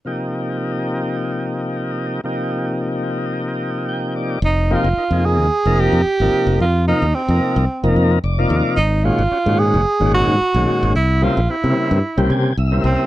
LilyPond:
<<
  \new Staff \with { instrumentName = "Tenor saxophone" } { \time 4/4 \key c \phrygian \tempo 4 = 110 r1 | r1 | \key aes \lydian ees'8 f'4 aes'4 g'4. | f'8 ees'8 c'4. r4. |
ees'8 f'4 aes'4 ges'4. | e'8 f'8 e'4. r4 c'8 | }
  \new Staff \with { instrumentName = "Tonewheel organ" } { \time 4/4 \key c \phrygian r1 | r2. g''8 d''8 | \key aes \lydian r1 | r2. d''4 |
r1 | r2 r8 aes''8 e''8 e''8 | }
  \new Staff \with { instrumentName = "Tonewheel organ" } { \time 4/4 \key c \phrygian <c f bes ees' g'>1 | <c f bes ees' g'>1 | \key aes \lydian r8 <c f bes ees' g'>16 r16 <ees' bes'>16 <c f bes ees' aes'>8. r16 <c f bes ees' bes'>8. r16 <c f bes ees' bes'>8. | r8 <c f bes ees' f'>16 r16 <ees' g'>16 <c f bes ees' bes'>8. r16 <c f bes ees' bes'>8. r16 <c f bes ees' f'>8. |
r8 <bes, ees aes des' ges'>16 r16 <des' ges'>16 <bes, ees aes des' ges'>8. r16 <bes, ees aes des' ges'>8. r16 <bes, ees aes des' ges'>8. | r8 <des g bes c' e'>16 r16 <c' g'>16 <des g bes c' e'>8. r16 <des g bes c' g'>8. r16 <des g bes c' e'>8. | }
  \new Staff \with { instrumentName = "Fingered electric bass" } { \clef bass \time 4/4 \key c \phrygian r1 | r1 | \key aes \lydian f,,8. f,,16 r16 f,8 ees,16 r16 f,,8 f,16 r16 aes,,16 r16 f,,16 | f,8. ees,16 r16 f,16 r16 c,16 r16 f,,16 f,8 f,,8 ees,16 r16 |
aes,,8. aes,,16 r16 aes,8 ges,,16 r16 aes,,8 aes,16 r16 ces,16 r16 aes,,16 | c,8. bes,,16 r16 c16 r16 g,16 r16 c,16 c8 c,8 c,16 r16 | }
>>